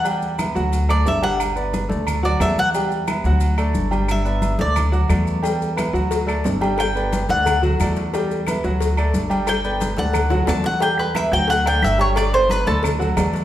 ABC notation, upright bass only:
X:1
M:4/4
L:1/8
Q:1/4=178
K:Dmix
V:1 name="Upright bass" clef=bass
E,,3 D,,3 G,,,2- | G,,,3 D,,3 E,,2- | E,,3 D,,3 G,,,2- | G,,,3 D,,3 E,,2- |
E,,3 D,,3 G,,,2- | G,,,3 D,,3 E,,2- | E,,3 D,,3 G,,,2- | G,,,3 D,,3 E,,2- |
E,,3 D,,3 G,,,2- | G,,,3 D,,3 E,,2 |]